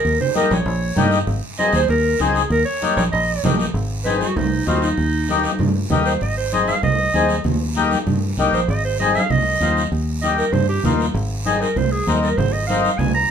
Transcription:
Already playing: A#4
0.05 D#2, high conga, long guiro
0.21 C5, low conga
0.35 A#3 D#4 G4 A#4, high conga, short guiro
0.51 A#1 C#5, short guiro
0.66 A#1, high conga, long guiro
0.96 G2 A#3 D#4 G4, high conga, low conga, short guiro
1.11 short guiro
1.27 G#1, high conga, long guiro
1.58 C4 D#4 G#4 D#5, high conga, short guiro
1.73 D#2 C5, short guiro
1.88 D#2 A#4, high conga, long guiro
2.19 C#2 C4 D#4 G#4, high conga, short guiro
2.35 G#4, short guiro
2.50 D#2 A#4, high conga, long guiro
2.65 C#5
2.82 A#3 D#4 G4, high conga, short guiro
2.97 A#1 C#5, short guiro
3.12 A#1 D#5, high conga, long guiro
3.43 A#1 A#3 D#4 G4, high conga, low conga, short guiro
3.60 short guiro
3.74 G#1, long guiro
4.04 C4 D#4 G#4 B4, high conga, short guiro
4.21 F#4, high conga, short guiro
4.36 C2 D#4, low conga, long guiro
4.67 D#2 C4 D#4 F4 F#4, high conga, short guiro
4.82 D#4, short guiro
4.98 D#2, long guiro
5.28 A#3 D#4 G4, high conga, short guiro
5.44 high conga, short guiro
5.59 G2, low conga, long guiro
5.90 D#2 A#3 D#4 G4, high conga, low conga, short guiro
6.06 C5, short guiro
6.21 G#1 D#5, long guiro
6.37 C5
6.52 C4 D#4 G#4 D#5, high conga, short guiro
6.68 F5, high conga, short guiro
6.83 C2 D#5, low conga, long guiro
7.14 D#2 C4 D#4 G#4, high conga, short guiro
7.29 short guiro
7.44 D#2, low conga, long guiro
7.75 A#3 D#4 G4, high conga, short guiro
7.91 high conga, short guiro
8.07 G2, low conga, long guiro
8.37 C2 A#3 D#4 G4, high conga, short guiro
8.53 A#1 C5, short guiro
8.68 G#1 D#5, long guiro
8.84 C5
8.99 C4 D#4 G#4 D#5, high conga, short guiro
9.15 F5, high conga, short guiro
9.30 C2 D#5, low conga, long guiro
9.61 D#2 C4 D#4 F4, high conga, short guiro
9.77 short guiro
9.92 D#2, long guiro
10.22 A#3 D#4 G4 D#5, high conga, short guiro
10.38 A#4, short guiro
10.52 G2 C5, low conga, long guiro
10.69 G4
10.84 D#2 A#3 D#4 F4, high conga, low conga, short guiro
11.00 short guiro
11.14 G#1, long guiro
11.45 C4 D#4 G#4 D#5, high conga, short guiro
11.61 A#4, short guiro
11.76 C2 C5, low conga, long guiro
11.91 G#4
12.07 D#2 C4 D#4 A#4, high conga, short guiro
12.23 A#4, short guiro
12.37 G#1 C5, low conga, long guiro
12.52 D#5
12.67 C4 D#4 A#4 F5, high conga, short guiro
12.84 short guiro
12.98 C2 G#5, low conga, long guiro
13.14 A#5

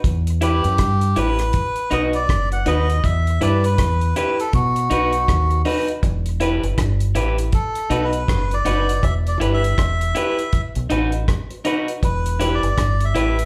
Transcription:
0.04 E2, kick, closed hi-hat
0.27 closed hi-hat
0.41 E4 G4 B4, closed hi-hat
0.64 F#2, closed hi-hat
0.78 G2, kick, cross-stick, closed hi-hat
1.01 closed hi-hat
1.16 A1 E4 G4 B4, closed hi-hat
1.39 cross-stick, closed hi-hat
1.53 kick, closed hi-hat
1.76 closed hi-hat
1.91 B1 D#4 F#4 B4 D#5, closed hi-hat
2.13 D5, closed hi-hat
2.29 F#1, kick, cross-stick, closed hi-hat
2.51 F#4 B4 F#5, closed hi-hat
2.65 D#2 D#4 F#4 B4 D#5, closed hi-hat
2.90 closed hi-hat
3.04 E2 E5, kick, closed hi-hat
3.27 closed hi-hat
3.40 G2 E4 G4 B4 D5, closed hi-hat
3.64 B4, closed hi-hat
3.78 E2, kick, cross-stick, closed hi-hat
4.01 closed hi-hat
4.15 E4 G4 B4, closed hi-hat
4.40 A4, closed hi-hat
4.53 B2 F#4, kick, closed hi-hat
4.76 closed hi-hat
4.90 B1 D#4 F#4 B4, closed hi-hat
5.13 closed hi-hat
5.28 D#2, kick, cross-stick, closed hi-hat
5.51 F#4 B4, closed hi-hat
5.65 D#4 F#4 B4, open hi-hat
5.88 closed hi-hat
6.03 E1, kick, closed hi-hat
6.26 closed hi-hat
6.40 E4 G4 B4, closed hi-hat
6.63 F#1, closed hi-hat
6.78 G1, kick, cross-stick, closed hi-hat
7.00 closed hi-hat
7.15 A1 E4 G4 B4, closed hi-hat
7.38 closed hi-hat
7.52 A4, kick, closed hi-hat
7.75 closed hi-hat
7.90 B1 D#4 F#4 B4, closed hi-hat
8.04 B4
8.13 closed hi-hat
8.28 F#1, kick, cross-stick, closed hi-hat
8.51 F#4 B4 D5, closed hi-hat
8.65 F#1 D#4 F#4 B4, closed hi-hat
8.89 closed hi-hat
9.03 E1 E5, kick, closed hi-hat
9.27 D5, closed hi-hat
9.40 G1 E4 G4 B4, closed hi-hat
9.53 E5
9.64 closed hi-hat
9.78 E1, kick, cross-stick, closed hi-hat
10.01 closed hi-hat
10.15 E4 G4 B4, closed hi-hat
10.39 closed hi-hat
10.53 kick, closed hi-hat
10.75 B1, closed hi-hat
10.90 A1 D#4 F#4 B4, closed hi-hat
11.12 closed hi-hat
11.28 kick, cross-stick, closed hi-hat
11.51 F#4 B4, closed hi-hat
11.65 D#4 F#4 B4, closed hi-hat
11.88 closed hi-hat
12.03 E1 B4, kick, closed hi-hat
12.26 closed hi-hat
12.40 E4 G4 B4, closed hi-hat
12.54 D5
12.63 F#1, closed hi-hat
12.78 G1, kick, cross-stick, closed hi-hat
13.01 closed hi-hat
13.05 E5
13.15 A1 E4 G4 B4, closed hi-hat
13.39 closed hi-hat

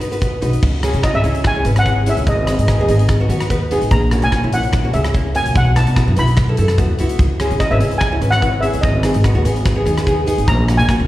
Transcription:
0.00 F#4 B4, closed hi-hat
0.11 D#4 F#4 B4, closed hi-hat
0.21 D#4 F#4 B4, kick, closed hi-hat
0.41 B1 D#4 F#4 B4, closed hi-hat
0.53 closed hi-hat
0.63 C#2, kick, crash
0.83 C#4 E4 G#4, cross-stick, closed hi-hat
0.94 C#3, closed hi-hat
1.03 C#4 E4 F#4 D#5, kick, cross-stick, closed hi-hat
1.14 G#1 C#4 E4 G#4 E5
1.24 C#2 C#4 E4 G#4, closed hi-hat
1.35 closed hi-hat
1.44 G#5, kick, cross-stick, closed hi-hat
1.55 C#4 E4 G#4
1.65 G#1 C#4 E4 B4, closed hi-hat
1.76 F#5, cross-stick, closed hi-hat
1.86 C#4 E4 G#4, kick, closed hi-hat
2.06 C#4 E4 G#4 E5, closed hi-hat
2.17 C#2, closed hi-hat
2.27 G#1 D#5, kick, closed hi-hat
2.38 D#5
2.45 B3 D#4 G#4 D#5, cross-stick, closed hi-hat
2.52 D#5
2.58 G#2 D#5, closed hi-hat
2.67 B3 D#4 G#4 D#5, kick, cross-stick, closed hi-hat
2.75 D#2 D#5
2.80 B3 D#4 G#4 D#5
2.88 G#1 B3 D#4 G#4 D#5, closed hi-hat
2.98 D#5, closed hi-hat
3.09 kick, cross-stick, closed hi-hat
3.20 B3 D#4 F#4
3.29 D#2 B3 D#4 F#4, closed hi-hat
3.40 cross-stick, closed hi-hat
3.49 B3 D#4 B4, kick, closed hi-hat
3.71 B3 D#4 G#4, closed hi-hat
3.81 G#1, closed hi-hat
3.91 A#1 A#5, kick, closed hi-hat
4.11 A#3 C#4 F#4, cross-stick, closed hi-hat
4.22 A#2 G#5, closed hi-hat
4.32 A#3 C#4 F#4, kick, cross-stick, closed hi-hat
4.43 C#2 A#3 C#4 E4
4.52 A#1 A#3 C#4 E4 F#5, closed hi-hat
4.63 closed hi-hat
4.73 kick, cross-stick, closed hi-hat
4.84 A#3 C#4 F#4
4.93 C#2 A#3 C#4 G#4 E5, closed hi-hat
5.04 cross-stick, closed hi-hat
5.14 A#3 C#4 E4, kick, closed hi-hat
5.34 A#3 C#4 F#4 G#5, closed hi-hat
5.46 A#1, closed hi-hat
5.55 B1 F#5, kick, closed hi-hat
5.75 B3 E4 F#4 A5, cross-stick, closed hi-hat
5.87 B2, closed hi-hat
5.96 B3 E4 F#4, kick, cross-stick, closed hi-hat
6.07 F#2 B3 E4 F#4
6.16 B1 B3 E4 F#4 B5, closed hi-hat
6.27 closed hi-hat
6.37 kick, cross-stick, closed hi-hat
6.48 B3 E4 A4
6.57 F#2 B3 E4 A4, closed hi-hat
6.68 cross-stick, closed hi-hat
6.78 D#2 B3 E4 F#4, kick, closed hi-hat
6.99 C#2 B3 E4 F#4, closed hi-hat
7.09 closed hi-hat
7.19 C#2, kick, closed hi-hat
7.40 C#4 E4 G#4, cross-stick, closed hi-hat
7.51 C#3, closed hi-hat
7.60 C#4 E4 F#4 D#5, kick, cross-stick, closed hi-hat
7.71 G#1 C#4 E4 B4 E5
7.80 C#2 C#4 E4 G#4, closed hi-hat
7.91 closed hi-hat
7.98 G#5, kick, cross-stick, closed hi-hat
8.12 C#4 E4 F#4
8.21 G#1 C#4 E4 B4, closed hi-hat
8.31 F#5, cross-stick, closed hi-hat
8.42 C#4 E4 B4, kick, closed hi-hat
8.61 C#4 E4 G#4 E5, closed hi-hat
8.73 C#2, closed hi-hat
8.81 G#1 D#5, kick, closed hi-hat
9.03 B3 D#4 G#4, cross-stick, closed hi-hat
9.14 G#2, closed hi-hat
9.24 B3 D#4 F#4, kick, cross-stick, closed hi-hat
9.34 D#2 B3 D#4 F#4
9.44 G#1 B3 D#4 G#4, closed hi-hat
9.56 closed hi-hat
9.66 kick, cross-stick, closed hi-hat
9.75 B3 D#4 G#4
9.85 D#2 B3 D#4 G#4, closed hi-hat
9.98 cross-stick, closed hi-hat
10.06 B3 D#4 G#4, kick, closed hi-hat
10.26 B3 D#4 G#4, closed hi-hat
10.38 G#1, closed hi-hat
10.48 A#1 A#5, kick, closed hi-hat
10.67 A#3 C#4 F#4, cross-stick, closed hi-hat
10.77 A#2 G#5, closed hi-hat
10.88 A#3 C#4 F#4, kick, cross-stick, closed hi-hat
11.00 C#2 A#3 C#4 F#4

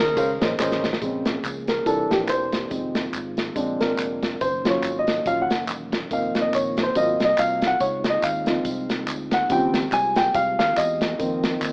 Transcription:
Already playing: D#2 C#3 D#3 C#4 D#4 G#4 A#4 C5
0.17 C#2 C#4 G#4 A#4 C5 F5, kick, ride, tambourine
0.41 A#1 C#4 G#4 A#4 C5 D#5, snare, ride, tambourine
0.59 A1 C#4 G#4 A#4 C5 D#5, snare, clap, tambourine
0.72 snare
0.84 snare, tambourine
0.93 snare
1.01 A#1 C#3 F3 G#3 A#3 C4 C#4 G#4, kick, closed hi-hat, tambourine
1.25 snare, closed hi-hat, tambourine
1.44 C#2, kick, clap, closed hi-hat, tambourine
1.68 A#4, snare, closed hi-hat, tambourine
1.86 C2 E3 A#3 C4 D4 G4 A4, kick, closed hi-hat, tambourine
2.10 A#1 G4, snare, closed hi-hat, tambourine
2.29 E1 C5, clap, closed hi-hat, tambourine
2.52 kick, snare, closed hi-hat, tambourine
2.70 F1 D#3 G#3 C4 D#4 F4, kick, closed hi-hat, tambourine
2.95 snare, closed hi-hat, tambourine
3.13 G#1, kick, clap, closed hi-hat, tambourine
3.37 snare, closed hi-hat, tambourine
3.55 A#1 D3 G#3 A#3 C4 D4, kick, closed hi-hat, tambourine
3.80 G#1 A#4, snare, closed hi-hat, tambourine
3.98 F1, clap, closed hi-hat, tambourine
4.23 kick, snare, closed hi-hat, tambourine
4.41 F#1 D#3 F#3 C#4 C5, kick, closed hi-hat, tambourine
4.65 F#3 C#4 F4, snare, closed hi-hat, tambourine
4.70 C#5
4.83 G#1, kick, clap, closed hi-hat, tambourine
4.99 D#5
5.07 snare, closed hi-hat, tambourine
5.26 A#1 F#3 C#4 F4 F5, kick, closed hi-hat, tambourine
5.42 F#5
5.50 F#1, snare, closed hi-hat, tambourine
5.68 E1, clap, closed hi-hat, tambourine
5.92 kick, snare, closed hi-hat, tambourine
6.11 F1 A#3 C4 D#4 F4 F5, kick, closed hi-hat, tambourine
6.35 snare, closed hi-hat, tambourine
6.41 D#5
6.53 A#1 C#5, kick, clap, closed hi-hat, tambourine
6.77 kick, snare, closed hi-hat, tambourine
6.83 C5
6.95 G#1 F#3 A#3 C4 F4 F#4 D#5, kick, closed hi-hat, tambourine
7.20 C2, snare, closed hi-hat, tambourine
7.24 D#5
7.38 C2 F5, clap, closed hi-hat, tambourine
7.62 kick, snare, closed hi-hat, tambourine
7.67 F#5
7.80 C#2 G#3 D#4 F4 C#5, kick, closed hi-hat, tambourine
8.04 snare, closed hi-hat, tambourine
8.09 D#5
8.22 D#2 F5, kick, clap, closed hi-hat, tambourine
8.46 F3 C4 D#4, snare, closed hi-hat, tambourine
8.65 C2, kick, closed hi-hat, tambourine
8.89 snare, closed hi-hat, tambourine
9.07 D2, clap, closed hi-hat, tambourine
9.31 F#5, kick, snare, closed hi-hat, tambourine
9.49 D#2 C#3 F3 G3 C4 F4 G4 G5, kick, closed hi-hat, tambourine
9.74 snare, closed hi-hat, tambourine
9.92 C2 G#5, kick, clap, closed hi-hat, tambourine
10.16 G5, snare, closed hi-hat, tambourine
10.34 C2 F5, kick, closed hi-hat, tambourine
10.59 D#2 F5, snare, closed hi-hat, tambourine
10.77 E2 D#5, clap, closed hi-hat, tambourine
11.01 kick, snare, closed hi-hat, tambourine
11.18 F2 D#3 A#3 C4 F4, kick, closed hi-hat, tambourine
11.43 snare, closed hi-hat, tambourine
11.61 D#2, kick, clap, closed hi-hat, tambourine

